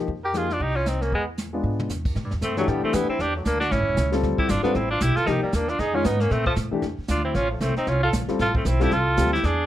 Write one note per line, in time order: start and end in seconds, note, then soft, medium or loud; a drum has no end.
0.08 0.57 F2 medium
0.08 brush sweep soft
0.08 kick soft
0.24 0.38 G4 medium
0.24 0.37 A#4 medium
0.33 0.47 F3 soft
0.33 0.48 A#3 soft
0.33 0.48 D#4 soft
0.33 0.54 F4 medium
0.33 0.48 G4 medium
0.33 0.51 G#4 medium
0.33 snare soft
0.33 hi-hat pedal soft
0.50 0.64 D4 medium
0.50 0.62 F4 medium
0.50 snare soft
0.60 1.09 C2 medium
0.60 0.78 D#4 medium
0.60 0.77 G4 medium
0.60 brush sweep soft
0.60 kick soft
0.75 0.89 C#4 medium
0.75 0.88 F4 medium
0.86 1.03 C4 medium
0.86 1.03 D#4 medium
0.86 snare soft
0.86 hi-hat pedal soft
1.01 1.12 A#3 medium
1.01 1.12 C#4 medium
1.01 snare soft
1.12 1.61 E2 medium
1.12 1.23 G#3 medium
1.12 1.27 B3 medium
1.12 brush sweep soft
1.12 kick soft
1.38 snare soft
1.38 hi-hat pedal soft
1.53 1.88 G#3 medium
1.53 1.88 B3 soft
1.53 1.88 D4 soft
1.53 1.88 F4 medium
1.63 1.88 G#2 medium
1.80 mid tom soft
1.89 2.14 E2 medium
1.89 snare soft
1.89 hi-hat pedal medium
2.05 kick medium
2.05 crash medium
2.15 2.24 A2 medium
2.15 brush sweep soft
2.15 kick soft
2.15 snare soft
2.24 2.32 G2 medium
2.31 2.41 E2 medium
2.31 snare soft
2.41 2.67 G2 medium
2.41 2.56 A3 medium
2.41 2.57 C4 medium
2.41 kick soft
2.41 snare medium
2.41 hi-hat pedal medium
2.57 2.91 E3 medium
2.57 2.70 F#3 medium
2.57 2.92 A3 medium
2.57 2.71 A3 medium
2.57 2.92 D4 medium
2.57 2.92 G4 medium
2.57 snare soft
2.68 2.82 A2 medium
2.68 2.83 G3 medium
2.68 2.83 B3 medium
2.68 brush sweep soft
2.68 kick soft
2.68 snare soft
2.83 2.96 A3 medium
2.83 2.96 C4 medium
2.83 muted upright bass stroke soft
2.93 3.07 F2 medium
2.93 3.07 E3 medium
2.93 3.08 A3 medium
2.93 3.09 B3 medium
2.93 3.08 D4 medium
2.93 3.08 E4 medium
2.93 3.08 G4 medium
2.93 kick soft
2.93 snare medium
2.93 hi-hat pedal medium
3.09 3.23 C4 medium
3.09 3.22 E4 medium
3.09 muted upright bass stroke soft
3.19 3.44 E2 medium
3.19 3.35 D4 medium
3.19 3.35 G4 medium
3.19 brush sweep soft
3.19 kick soft
3.19 snare soft
3.36 3.48 F#3 soft
3.36 3.46 A3 soft
3.44 3.70 D2 medium
3.44 3.59 A#3 medium
3.44 3.59 D4 medium
3.44 kick soft
3.44 snare medium
3.44 hi-hat pedal soft
3.60 3.74 D4 medium
3.60 3.72 F#4 medium
3.60 snare soft
3.71 3.79 A1 medium
3.71 4.13 C#4 medium
3.71 4.12 E4 medium
3.71 brush sweep soft
3.71 kick soft
3.71 snare soft
3.79 3.88 G1 medium
3.88 3.96 E1 medium
3.97 4.22 C#2 medium
3.97 kick soft
3.97 snare medium
3.97 hi-hat pedal medium
4.12 4.47 G3 medium
4.12 4.47 C4 medium
4.12 4.47 F4 medium
4.12 4.47 A4 medium
4.12 snare medium
4.23 4.37 D2 medium
4.23 brush sweep soft
4.23 kick soft
4.23 snare soft
4.38 4.52 E4 medium
4.38 4.50 G4 medium
4.38 muted upright bass stroke soft
4.38 kick medium
4.49 4.63 G1 medium
4.49 4.63 D4 medium
4.49 4.63 F4 medium
4.49 kick soft
4.49 snare medium
4.49 hi-hat pedal medium
4.63 4.73 G3 medium
4.63 4.77 B3 medium
4.63 4.74 C4 medium
4.63 4.78 D4 medium
4.63 4.74 F4 medium
4.63 4.74 A4 medium
4.63 muted upright bass stroke soft
4.63 snare soft
4.75 5.00 A1 medium
4.75 4.89 C4 medium
4.75 4.91 E4 medium
4.75 brush sweep soft
4.75 kick soft
4.75 snare soft
4.90 5.04 D4 medium
4.90 5.04 F4 medium
5.01 5.15 B1 medium
5.01 5.17 E4 medium
5.01 5.18 G4 medium
5.01 kick soft
5.01 snare medium
5.01 hi-hat pedal medium
5.15 5.28 F4 loud
5.15 5.31 A4 medium
5.15 muted upright bass stroke soft
5.15 snare soft
5.25 5.41 C2 medium
5.25 5.40 F3 medium
5.25 5.40 A#3 medium
5.25 5.40 D#4 medium
5.25 5.42 D#4 medium
5.25 5.41 G4 medium
5.25 5.43 G4 medium
5.25 brush sweep soft
5.25 kick soft
5.25 snare soft
5.42 5.56 G3 medium
5.42 5.55 A#3 medium
5.42 muted upright bass stroke soft
5.52 5.78 D#2 medium
5.52 5.70 A#3 medium
5.52 5.71 D4 medium
5.52 kick soft
5.52 snare medium
5.52 hi-hat pedal medium
5.68 5.81 D4 medium
5.68 5.81 F4 medium
5.68 snare soft
5.79 6.04 F2 medium
5.79 5.96 D#4 medium
5.79 5.96 G#4 medium
5.79 brush sweep soft
5.79 kick soft
5.79 snare soft
5.93 6.03 D#3 medium
5.93 6.03 G#3 medium
5.93 6.04 C#4 medium
5.93 6.07 C#4 medium
5.93 6.04 F4 medium
5.93 6.06 F4 medium
6.04 6.30 G#2 medium
6.04 6.22 B3 medium
6.04 6.23 D#4 medium
6.04 kick soft
6.04 snare medium
6.04 hi-hat pedal medium
6.20 6.33 A#3 medium
6.20 6.33 C#4 medium
6.20 snare soft
6.31 6.56 A#2 medium
6.31 6.46 A3 medium
6.31 6.46 C4 medium
6.31 brush sweep medium
6.31 kick soft
6.31 snare soft
6.46 6.53 F3 medium
6.46 6.56 A3 medium
6.46 kick medium
6.56 6.71 A2 medium
6.56 kick soft
6.56 snare medium
6.56 hi-hat pedal soft
6.71 6.81 E3 medium
6.71 6.81 A3 medium
6.71 6.82 D4 medium
6.71 6.82 G4 medium
6.71 muted upright bass stroke soft
6.82 6.97 F2 medium
6.82 brush sweep medium
6.82 kick soft
6.82 snare soft
6.98 muted upright bass stroke soft
7.08 7.34 D2 medium
7.08 7.24 D4 medium
7.08 7.23 F4 medium
7.08 kick soft
7.08 snare medium
7.08 hi-hat pedal medium
7.24 7.37 C4 medium
7.24 7.36 E4 medium
7.34 7.60 A1 medium
7.34 7.50 C#4 medium
7.34 7.50 F4 medium
7.34 brush sweep soft
7.34 kick soft
7.34 snare soft
7.50 7.63 F3 soft
7.50 7.64 A3 soft
7.61 7.75 C2 medium
7.61 7.76 A3 medium
7.61 7.76 C4 medium
7.61 kick soft
7.61 snare medium
7.61 hi-hat pedal soft
7.76 7.90 C4 medium
7.76 7.90 D#4 medium
7.76 muted upright bass stroke soft
7.76 snare soft
7.87 8.12 C2 medium
7.87 8.02 C#4 medium
7.87 8.03 F4 medium
7.87 brush sweep soft
7.87 kick soft
7.87 snare soft
8.03 8.09 F4 loud
8.03 8.13 A4 medium
8.13 8.27 A#1 medium
8.13 kick soft
8.13 snare medium
8.13 hi-hat pedal medium
8.28 8.38 G3 medium
8.28 8.38 C4 medium
8.28 8.38 F4 medium
8.28 8.38 A4 medium
8.28 muted upright bass stroke soft
8.28 snare soft
8.39 8.64 A1 medium
8.39 8.54 F4 medium
8.39 8.54 A4 medium
8.39 brush sweep medium
8.39 kick soft
8.39 snare soft
8.54 8.69 A3 medium
8.54 8.67 C4 medium
8.54 kick medium
8.65 8.90 B1 medium
8.65 8.84 C4 medium
8.65 8.83 E4 medium
8.65 snare medium
8.65 hi-hat pedal medium
8.80 8.90 G3 medium
8.80 8.90 C4 medium
8.80 8.94 E4 medium
8.80 8.90 F4 medium
8.80 8.95 G4 medium
8.80 8.90 A4 medium
8.80 snare soft
8.91 9.16 C2 medium
8.91 9.32 F4 loud
8.91 9.33 A4 medium
8.91 brush sweep soft
8.91 kick soft
8.91 snare soft
9.17 9.43 D2 medium
9.17 9.31 G3 medium
9.17 9.31 C4 medium
9.17 9.31 F4 medium
9.17 9.31 G4 medium
9.17 kick soft
9.17 snare medium
9.17 hi-hat pedal medium
9.26 snare soft
9.33 9.46 E4 medium
9.33 9.46 G4 medium
9.33 snare soft
9.44 9.66 E2 medium
9.44 9.66 D4 medium
9.44 9.66 G#4 medium
9.44 brush sweep soft
9.44 kick soft
9.44 snare soft